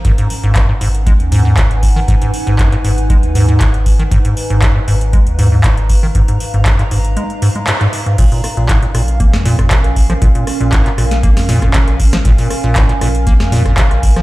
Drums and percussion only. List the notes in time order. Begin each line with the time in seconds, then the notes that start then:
0.05 kick, closed hi-hat
0.18 closed hi-hat
0.30 open hi-hat
0.43 closed hi-hat
0.55 kick, clap, closed hi-hat
0.81 open hi-hat
0.95 closed hi-hat
1.07 kick, closed hi-hat
1.20 closed hi-hat
1.32 open hi-hat
1.57 kick, clap, closed hi-hat
1.71 closed hi-hat
1.83 kick, open hi-hat
2.08 kick, closed hi-hat
2.22 closed hi-hat
2.34 open hi-hat
2.47 closed hi-hat
2.59 kick, clap, closed hi-hat
2.72 clap, closed hi-hat
2.84 open hi-hat
2.98 closed hi-hat
3.10 kick, closed hi-hat
3.23 closed hi-hat
3.35 open hi-hat
3.49 closed hi-hat
3.60 kick, clap, closed hi-hat
3.74 closed hi-hat
3.86 kick, open hi-hat
3.99 closed hi-hat
4.12 kick, closed hi-hat
4.25 closed hi-hat
4.37 open hi-hat
4.50 closed hi-hat
4.62 kick, clap, closed hi-hat
4.88 open hi-hat
5.01 closed hi-hat
5.13 kick, closed hi-hat
5.27 closed hi-hat
5.39 open hi-hat
5.64 kick, clap, closed hi-hat
5.77 closed hi-hat
5.89 kick, open hi-hat
6.15 kick, closed hi-hat
6.28 closed hi-hat
6.40 open hi-hat
6.54 closed hi-hat
6.66 kick, clap, closed hi-hat
6.79 clap, closed hi-hat
6.91 open hi-hat
7.05 closed hi-hat
7.17 closed hi-hat
7.30 closed hi-hat
7.42 open hi-hat
7.55 closed hi-hat
7.67 clap, closed hi-hat
7.81 closed hi-hat
7.93 open hi-hat
8.06 closed hi-hat
8.18 kick, closed hi-hat, crash
8.32 open hi-hat
8.44 cross-stick, open hi-hat
8.57 closed hi-hat
8.69 kick, cross-stick, snare, clap, closed hi-hat
8.83 closed hi-hat
8.95 cross-stick, open hi-hat
9.08 closed hi-hat
9.20 kick, closed hi-hat
9.33 cross-stick, snare
9.45 snare, open hi-hat
9.59 kick, cross-stick, closed hi-hat
9.71 kick, clap, closed hi-hat
9.84 cross-stick, closed hi-hat
9.96 kick, open hi-hat
10.10 cross-stick, closed hi-hat
10.22 kick, closed hi-hat
10.35 closed hi-hat
10.47 cross-stick, open hi-hat
10.61 closed hi-hat
10.72 kick, cross-stick, snare, clap, closed hi-hat
10.86 clap, closed hi-hat
10.98 cross-stick, open hi-hat
11.11 snare, closed hi-hat
11.23 kick, closed hi-hat
11.37 cross-stick, snare, open hi-hat
11.49 snare, open hi-hat
11.62 kick, cross-stick, closed hi-hat
11.74 kick, clap, closed hi-hat
11.88 cross-stick, closed hi-hat
12.00 kick, open hi-hat
12.13 cross-stick, snare, closed hi-hat
12.25 kick, closed hi-hat
12.38 open hi-hat
12.50 cross-stick, open hi-hat
12.64 closed hi-hat
12.76 kick, cross-stick, snare, clap, closed hi-hat
12.89 closed hi-hat
13.01 cross-stick, open hi-hat
13.15 closed hi-hat
13.27 kick, closed hi-hat
13.40 cross-stick, snare
13.52 snare, open hi-hat
13.66 kick, cross-stick, closed hi-hat
13.77 kick, clap, closed hi-hat
13.91 cross-stick, closed hi-hat
14.03 kick, open hi-hat
14.16 cross-stick, closed hi-hat